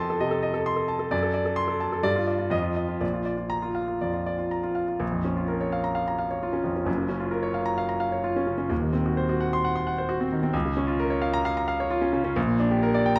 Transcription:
0.00 0.18 F2 medium
0.00 0.10 A4 medium
0.00 0.20 D#5 medium
0.00 0.16 A5 medium
0.00 0.66 C6 loud
0.10 0.28 A4 medium
0.20 0.38 C3 medium
0.20 0.39 D#5 medium
0.31 0.50 A4 medium
0.43 0.61 D#5 medium
0.54 0.72 A4 medium
0.66 0.84 C6 medium
0.76 0.95 A4 medium
0.88 1.07 A5 medium
0.99 1.12 A4 medium
1.11 2.02 F#2 medium
1.11 1.30 D5 medium
1.23 1.42 A4 medium
1.34 1.53 D5 medium
1.45 1.65 A4 medium
1.56 1.76 C6 medium
1.68 1.88 A4 medium
1.80 2.00 A5 medium
1.92 2.05 A4 medium
2.03 2.50 G2 medium
2.03 2.23 D5 medium
2.16 2.35 F4 medium
2.27 2.47 D5 medium
2.39 2.51 F4 medium
2.50 2.99 F2 medium
2.50 2.71 D#5 medium
2.63 2.83 F4 medium
2.76 2.96 D#5 medium
2.89 3.01 F4 medium
3.01 3.99 A#1 medium
3.01 3.21 D5 medium
3.13 3.34 F4 medium
3.25 3.46 D5 medium
3.37 3.59 F4 soft
3.50 3.71 A#5 medium
3.62 3.84 F4 medium
3.75 3.97 F5 medium
3.88 4.09 F4 soft
4.01 4.22 F2 medium
4.01 4.22 D5 medium
4.13 4.35 F4 medium
4.26 4.47 D5 medium
4.38 4.59 F4 medium
4.51 4.72 A#5 medium
4.63 4.84 F4 medium
4.75 4.96 F5 medium
4.88 5.01 F4 soft
5.00 6.82 A#1 medium
5.12 5.32 F2 medium
5.24 5.44 C#4 medium
5.36 5.56 F4 medium
5.48 5.67 A#4 medium
5.61 5.79 C#5 medium
5.72 5.91 F5 medium
5.84 6.02 A#5 medium
5.95 6.14 F5 medium
6.08 6.26 A#5 medium
6.19 6.37 F5 medium
6.31 6.49 C#5 medium
6.43 6.61 F4 medium
6.53 6.71 C#4 medium
6.64 6.83 F2 medium
6.76 6.87 C#4 medium
6.85 8.66 F#1 medium
6.85 8.67 F#2 medium
6.98 7.16 C#3 medium
7.09 7.28 C#4 medium
7.20 7.39 F4 medium
7.31 7.50 A#4 medium
7.43 7.62 C#5 medium
7.54 7.73 F5 medium
7.66 7.85 A#5 medium
7.78 7.97 F5 medium
7.89 8.08 A#5 medium
8.00 8.19 F5 medium
8.12 8.31 C#5 medium
8.24 8.43 F4 medium
8.36 8.55 C#4 medium
8.47 8.66 C#3 medium
8.58 8.70 C#4 medium
8.69 10.49 D#1 medium
8.69 10.50 D#2 medium
8.82 9.01 D#3 medium
8.93 9.12 C4 medium
9.06 9.24 F#4 medium
9.17 9.36 C5 medium
9.29 9.48 F#4 medium
9.40 9.59 F#5 medium
9.53 9.71 C6 medium
9.64 9.82 F#5 medium
9.76 9.93 C6 medium
9.87 10.05 F#5 medium
9.98 10.16 C5 medium
10.09 10.27 F#4 medium
10.20 10.39 C4 medium
10.32 10.50 D#3 medium
10.43 10.54 C4 medium
10.53 12.32 C#2 medium
10.65 10.84 C#3 medium
10.77 10.95 C#4 medium
10.87 11.06 F4 medium
11.00 11.18 A#4 medium
11.10 11.29 C#5 medium
11.22 11.41 F5 medium
11.34 11.52 A#5 loud
11.45 11.64 F5 medium
11.57 11.75 A#5 medium
11.68 11.86 F5 medium
11.80 11.98 C#5 medium
11.90 12.09 F4 medium
12.02 12.20 C#4 medium
12.13 12.32 C#3 medium
12.24 12.36 C#4 medium
12.36 13.19 A#1 medium
12.47 12.66 A#2 medium
12.60 12.78 D4 medium
12.71 12.89 G4 medium
12.83 13.01 A#4 medium
12.94 13.12 D5 medium
13.06 13.19 G5 medium
13.16 13.19 A#5 loud

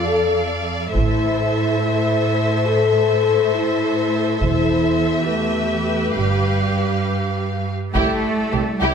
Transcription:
0.00 0.94 F2 soft
0.00 0.93 A4 soft
0.00 0.90 D5 soft
0.00 0.90 F5 soft
0.07 0.37 A4 medium
0.94 1.48 A1 soft
0.94 4.37 A2 medium
0.94 1.76 E4 medium
0.94 5.25 A4 soft
0.94 5.25 C5 medium
0.94 4.37 E5 soft
0.94 taiko soft
1.79 2.65 E4 medium
2.66 3.54 A4 medium
3.54 4.39 E4 medium
4.40 4.96 E1 medium
4.40 6.17 E2 medium
4.40 5.26 E4 medium
4.40 6.14 E5 medium
4.40 taiko soft
5.28 6.15 A3 medium
5.28 7.75 G4 soft
5.28 7.75 B4 soft
6.16 6.72 G1 soft
6.16 7.72 G2 soft
6.16 7.06 G3 soft
6.16 7.72 F5 soft
7.94 8.06 C2 medium
7.94 8.04 C2 soft
7.94 8.94 G3 soft
7.94 8.78 A3 medium
7.94 8.94 E4 soft
7.94 8.22 E4 soft
7.94 8.22 G4 soft
7.94 8.22 G4 medium
7.94 8.78 A4 medium
7.94 taiko soft
8.52 8.64 C2 soft
8.52 8.62 C2 soft
8.52 8.60 G4 soft
8.52 8.61 G4 soft
8.52 8.60 C5 soft
8.81 8.90 C2 soft
8.81 8.94 C2 soft
8.81 8.94 G3 medium
8.81 8.94 E4 medium
8.81 8.94 G4 soft

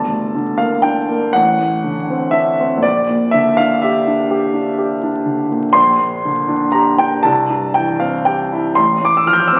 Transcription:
0.00 1.28 G1 medium
0.00 0.58 A5 medium
0.08 0.48 D2 soft
0.35 0.75 D3 soft
0.58 1.00 A#3 soft
0.58 0.84 F5 medium
0.82 1.25 D4 soft
0.82 1.34 G5 medium
1.08 1.34 A#3 soft
1.33 2.80 A1 medium
1.33 2.34 F#5 medium
1.59 2.00 A2 soft
1.84 2.25 D3 soft
2.10 2.50 C4 soft
2.31 2.73 D4 soft
2.31 2.82 E5 medium
2.60 2.85 C4 soft
2.78 5.68 A#1 medium
2.83 3.33 D5 medium
3.09 3.49 A#2 soft
3.31 3.73 D3 medium
3.31 3.57 E5 medium
3.57 3.97 D4 soft
3.57 3.82 F5 medium
3.82 4.21 G4 medium
3.82 4.30 E5 medium
4.07 4.45 D4 soft
4.31 4.69 G4 medium
4.54 4.93 D4 soft
4.78 5.17 G4 medium
5.03 5.42 D4 soft
5.25 5.65 D3 soft
5.51 5.76 A#2 soft
5.73 7.20 A#1 medium
5.73 6.74 C6 loud
6.00 6.40 A#2 soft
6.25 6.65 D3 soft
6.48 6.89 D4 medium
6.72 7.14 G4 soft
6.72 6.98 A#5 medium
6.98 7.25 D4 soft
6.98 7.24 G5 medium
7.23 8.70 C2 medium
7.23 7.74 A5 medium
7.50 7.90 G2 soft
7.74 8.15 E3 soft
7.74 7.99 G5 medium
8.00 8.40 C4 soft
8.00 8.25 F5 medium
8.25 8.66 G4 soft
8.25 8.75 G5 medium
8.52 8.76 E4 soft
8.75 9.60 A1 medium
8.75 9.05 C6 medium
9.01 9.40 A2 soft
9.01 9.17 D6 medium
9.17 9.27 E6 medium
9.26 9.60 F3 soft
9.26 9.35 F6 medium
9.33 9.41 G6 medium
9.40 9.47 F6 medium
9.48 9.56 E6 medium
9.52 9.60 C4 soft
9.56 9.60 D6 medium

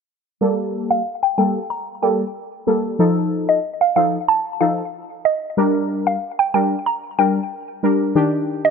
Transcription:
0.41 1.01 G3 medium
0.41 1.01 A#3 medium
0.41 1.01 A4 loud
0.91 1.01 F5 medium
1.23 1.33 G5 medium
1.38 1.59 G3 medium
1.38 1.59 A#3 medium
1.38 1.59 A4 medium
1.38 1.50 G5 medium
1.70 1.82 A#5 medium
2.02 2.23 G3 medium
2.02 2.24 A#3 medium
2.02 2.24 A4 medium
2.02 2.14 G5 medium
2.67 2.97 G3 medium
2.67 2.97 A#3 medium
2.67 2.97 A4 medium
2.99 3.59 F3 medium
2.99 3.59 D#4 medium
2.99 3.59 A4 loud
3.49 3.59 D#5 medium
3.81 3.92 F5 medium
3.96 4.17 F3 medium
3.96 4.17 D#4 medium
3.96 4.17 A4 medium
3.96 4.08 F5 medium
4.28 4.40 A5 loud
4.60 4.82 F3 medium
4.60 4.82 D#4 medium
4.60 4.82 A4 medium
4.60 4.72 F5 medium
5.25 5.37 D#5 medium
5.57 6.17 G3 loud
5.57 6.17 D4 medium
5.57 6.17 A#4 loud
6.07 6.17 F5 medium
6.39 6.50 G5 medium
6.54 6.75 G3 medium
6.54 6.75 D4 medium
6.54 6.75 A#4 medium
6.54 6.66 G5 medium
6.86 6.98 A#5 medium
7.18 7.40 G3 medium
7.18 7.40 D4 medium
7.18 7.40 A#4 medium
7.18 7.31 G5 medium
7.83 8.13 G3 medium
7.83 8.13 D4 medium
7.83 8.13 A#4 medium
8.15 8.70 D#3 medium
8.15 8.70 D4 medium
8.15 8.70 G4 loud
8.65 8.70 D#5 medium

